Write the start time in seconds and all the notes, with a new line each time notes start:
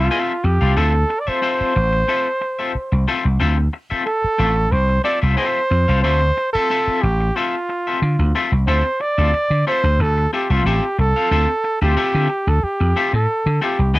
Already playing: F4
0.11 C4 F4 A4 E5
0.43 F2 G4, muted clean electric guitar stroke
0.61 C2 C4 F4 A4 F5
0.76 D2 C4 F4 A4 E5
0.94 muted clean electric guitar stroke
1.10 muted clean electric guitar stroke
1.20 D5
1.27 C4 F4 A4 C5 E5, muted slap bass stroke
1.42 C4 F4 A4 E5
1.61 muted slap bass stroke
1.75 A1, muted clean electric guitar stroke
1.93 muted clean electric guitar stroke
2.08 C4 F4 A4 E5
2.41 muted clean electric guitar stroke
2.59 C4 F4 A4 E5
2.75 muted slap bass stroke
2.92 C2, muted clean electric guitar stroke
3.08 C4 F4 A4 E5
3.25 C2, muted clean electric guitar stroke
3.40 D2 C4 F4 A4 E5
3.58 muted clean electric guitar stroke
3.73 muted clean electric guitar stroke
3.90 C4 F4 A4 E5, muted slap bass stroke
4.06 A4, muted clean electric guitar stroke
4.24 muted slap bass stroke
4.38 A1 C4 F4 A4 E5
4.56 muted clean electric guitar stroke
4.71 C2 C5, muted clean electric guitar stroke
4.89 muted clean electric guitar stroke
5.04 C4 F4 A4 D5 E5
5.21 C2 C4 F4 A4 E5
5.37 C4 F4 A4 C5 E5
5.70 F2, muted clean electric guitar stroke
5.88 C2 C4 F4 A4 F5
6.02 D2 C4 F4 A4 C5 E5
6.21 muted clean electric guitar stroke
6.37 muted clean electric guitar stroke
6.53 C4 F4 A4 E5, muted slap bass stroke
6.70 C4 F4 A4 E5
6.87 muted slap bass stroke
7.02 A1 G4, muted clean electric guitar stroke
7.21 muted clean electric guitar stroke
7.36 C4 F4 A4 E5
7.69 muted clean electric guitar stroke
7.87 C4 F4 A4 E5
8.02 D3
8.19 D2, muted clean electric guitar stroke
8.35 C4 F4 A4 E5
8.52 C2, muted clean electric guitar stroke
8.67 D2 C4 F4 A4 C5 E5
8.85 muted clean electric guitar stroke
9.00 D5, muted clean electric guitar stroke
9.18 D2 C4 F4 A4 E5
9.33 muted slap bass stroke, muted clean electric guitar stroke
9.50 D3
9.67 C4 F4 A4 C5 E5
9.84 D2, muted clean electric guitar stroke
9.99 D2 A4, muted clean electric guitar stroke
10.18 muted clean electric guitar stroke
10.33 C4 F4 G4 A4 E5
10.50 C2 C4 F4 A4 E5
10.65 A1 C4 F4 G4 A4 E5
10.98 C2 A4, muted clean electric guitar stroke
11.16 C4 F4 A4 F5
11.31 D2 C4 F4 A4 E5
11.49 muted clean electric guitar stroke
11.64 muted clean electric guitar stroke
11.82 D2 C4 F4 G4 A4 E5
11.97 C4 F4 A4 E5
12.15 D3
12.29 muted clean electric guitar stroke
12.47 D2 A4, muted clean electric guitar stroke
12.63 G4, muted slap bass stroke
12.80 F2, muted clean electric guitar stroke
12.96 C4 F4 A4 E5
13.13 A2 A4, muted clean electric guitar stroke
13.46 D3, muted clean electric guitar stroke
13.61 C4 F4 G4 A4 E5
13.79 C2, muted clean electric guitar stroke
13.94 D2 C4 F4 A4 E5